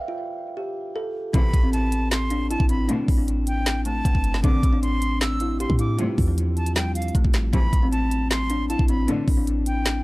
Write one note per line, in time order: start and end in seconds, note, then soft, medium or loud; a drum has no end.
0.08 0.54 F4 medium
0.57 0.93 G4 medium
0.96 1.11 A4 medium
1.33 1.53 A1 loud
1.33 1.51 E2 loud
1.33 1.51 C3 loud
1.33 1.51 E3 loud
1.33 1.61 B3 loud
1.33 1.71 B5 loud
1.33 kick loud
1.33 closed hi-hat medium
1.54 2.56 A1 loud
1.54 kick medium
1.54 closed hi-hat medium
1.63 2.27 C4 medium
1.73 2.09 A5 medium
1.73 closed hi-hat medium
1.92 closed hi-hat medium
2.11 2.48 C6 medium
2.11 snare loud
2.11 clap loud
2.11 closed hi-hat medium
2.30 2.46 D4 medium
2.30 closed hi-hat medium
2.50 2.66 E4 medium
2.50 2.69 A5 medium
2.50 closed hi-hat medium
2.60 2.88 A1 loud
2.60 kick medium
2.69 2.85 C4 medium
2.69 2.88 B5 medium
2.69 closed hi-hat medium
2.89 3.05 A2 loud
2.89 3.05 B2 loud
2.89 3.05 D3 loud
2.89 3.16 D4 loud
2.89 closed hi-hat medium
3.08 4.01 A1 loud
3.08 kick medium
3.08 open hi-hat medium
3.18 3.82 D4 medium
3.28 closed hi-hat medium
3.47 3.84 G5 medium
3.47 closed hi-hat medium
3.66 snare loud
3.66 clap loud
3.66 closed hi-hat medium
3.85 4.01 A3 medium
3.85 4.40 A5 medium
3.85 closed hi-hat medium
4.05 4.14 A1 loud
4.05 4.41 B3 medium
4.05 kick medium
4.05 closed hi-hat medium
4.15 4.43 G1 loud
4.15 kick medium
4.24 closed hi-hat medium
4.34 snare medium
4.44 4.62 A1 loud
4.44 4.60 E2 loud
4.44 4.60 G2 loud
4.44 4.60 D3 loud
4.44 4.71 C4 loud
4.44 4.80 D6 loud
4.44 kick loud
4.44 closed hi-hat medium
4.63 5.66 A1 loud
4.63 kick medium
4.63 closed hi-hat medium
4.73 5.36 D4 medium
4.83 5.19 C6 medium
4.83 closed hi-hat medium
5.02 closed hi-hat medium
5.21 5.58 E6 medium
5.21 snare loud
5.21 clap loud
5.21 closed hi-hat medium
5.40 5.56 E4 medium
5.40 closed hi-hat medium
5.60 5.75 G4 medium
5.60 5.78 C6 medium
5.60 closed hi-hat medium
5.70 5.98 A2 loud
5.70 kick medium
5.79 5.95 E4 medium
5.79 5.98 D6 medium
5.79 closed hi-hat medium
5.99 6.15 G2 loud
5.99 6.15 A2 loud
5.99 6.15 C3 loud
5.99 6.26 F4 loud
5.99 closed hi-hat medium
6.18 7.11 E2 loud
6.18 kick medium
6.18 open hi-hat medium
6.28 6.73 F3 medium
6.38 closed hi-hat medium
6.57 6.75 A5 medium
6.57 closed hi-hat soft
6.66 closed hi-hat medium
6.76 7.13 G3 medium
6.76 6.95 G5 medium
6.76 snare loud
6.76 clap loud
6.76 closed hi-hat medium
6.95 7.14 F5 medium
6.95 closed hi-hat medium
7.02 closed hi-hat medium
7.08 closed hi-hat soft
7.15 7.24 A1 loud
7.15 7.30 A3 medium
7.15 kick medium
7.15 closed hi-hat medium
7.25 7.52 A1 loud
7.25 kick medium
7.34 snare loud
7.34 clap medium
7.34 closed hi-hat medium
7.53 7.72 A1 loud
7.53 7.70 E2 loud
7.53 7.70 C3 loud
7.53 7.70 E3 loud
7.53 7.80 B3 loud
7.53 7.90 B5 loud
7.53 kick loud
7.53 closed hi-hat medium
7.73 8.75 A1 loud
7.73 kick medium
7.73 closed hi-hat medium
7.83 8.46 C4 medium
7.92 8.28 A5 medium
7.92 closed hi-hat medium
8.11 closed hi-hat medium
8.31 8.67 C6 medium
8.31 snare loud
8.31 clap loud
8.31 closed hi-hat medium
8.50 8.66 D4 medium
8.50 closed hi-hat medium
8.69 8.85 E4 medium
8.69 8.88 A5 medium
8.69 closed hi-hat medium
8.79 9.07 A1 loud
8.79 kick medium
8.88 9.04 C4 medium
8.88 9.07 B5 medium
8.88 closed hi-hat medium
9.08 9.25 A2 loud
9.08 9.25 B2 loud
9.08 9.25 D3 loud
9.08 9.36 D4 loud
9.08 closed hi-hat medium
9.28 10.04 A1 loud
9.28 kick medium
9.28 open hi-hat medium
9.37 10.01 D4 medium
9.47 closed hi-hat medium
9.66 10.03 G5 medium
9.66 closed hi-hat medium
9.86 snare loud
9.86 clap loud
9.86 closed hi-hat medium